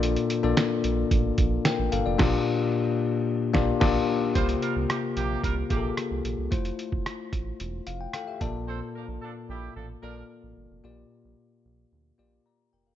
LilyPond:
<<
  \new Staff \with { instrumentName = "Tine electric piano" } { \time 4/4 \key g \dorian \tempo 4 = 111 << { r2. <bes' g''>8 <a' f''>16 <f' d''>16 | r1 | r1 | r2 r8 f''16 g''16 <a' f'' g''>16 <g' e''>16 a''8 |
r1 | r2. <d'' bes''>8 <bes' g''>16 <a' f''>16 | } \\ { <bes d' f' a' d''>8 r16 <bes d' f' a' d''>4. r4. r16 | <bes, bes d' f' g' d''>8 r2 <bes d' f' g' d''>8 <bes d' f' g' d''>8 r8 | <bes f' g' c''>4. r4 <bes f' g' aes' a'>4 r8 | <a e' f' c''>4. r2 <bes f' a' d''>8~ |
<bes f' a' d''>4 r4. <bes f' a' d''>4 r8 | <bes f' g' d''>4. r4 <bes f' g' d''>4 r8 | } >> }
  \new Staff \with { instrumentName = "Tine electric piano" } { \clef bass \time 4/4 \key g \dorian bes,4 r2. | r1 | c4. r2 r8 | r2. r8 bes,8~ |
bes,4 r2. | bes,4. r2 r8 | }
  \new Staff \with { instrumentName = "Horn section" } { \time 4/4 \key g \dorian r1 | r1 | <g f' c''>16 r16 <g f' bes'>16 r16 <c bes g'>16 r16 <c bes g'>8 <g f' bes'>16 r16 <c bes g'>8 r4 | r1 |
<c' a' c''>16 r16 <f d' bes'>16 r16 <f d' a'>16 r16 <g e' g'>8 <f d' a'>16 r16 <f d' bes'>8 r4 | r1 | }
  \new Staff \with { instrumentName = "Analog synth bass" } { \clef bass \time 4/4 \key g \dorian bes,,8 r16 bes,,16 r8 bes,,8 a,,8 bes,,8 r16 a,,16 g,,16 f,,16 | bes,,8 r2 bes,,8 bes,,8 r8 | c,8 r16 c,16 r8 bes,,8 c,8 bes,,8 r16 c,16 bes,,16 c,16 | f,,8 r16 f,,16 r8 a,,8 e,,8 f,,8 r8 bes,,8~ |
bes,,8 r16 bes,,16 r8 bes,,8 a,,8 bes,,8 r16 a,,16 g,,16 f,,16 | bes,,8 r16 bes,,16 r8 bes,,8 d,8 bes,,8 r8 f,,8 | }
  \new DrumStaff \with { instrumentName = "Drums" } \drummode { \time 4/4 hh16 hh16 hh8 <hh sn tamb>8 hh8 <hh bd>8 <hh bd>8 <hh sn tamb>8 hh8 | <cymc bd sn>4 r4 r8 <bd sn>8 <cymc bd sn>4 | <hh bd>16 hh16 hh8 <hh ss>8 hh8 <hh bd>8 <hh bd>8 <hh ss>8 hh8 | <hh bd>16 hh16 hh16 bd16 <hh ss>8 <hh bd>8 hh8 hh8 <hh ss>8 <hh bd>8 |
r4 r4 r4 r4 | r4 r4 r4 r4 | }
>>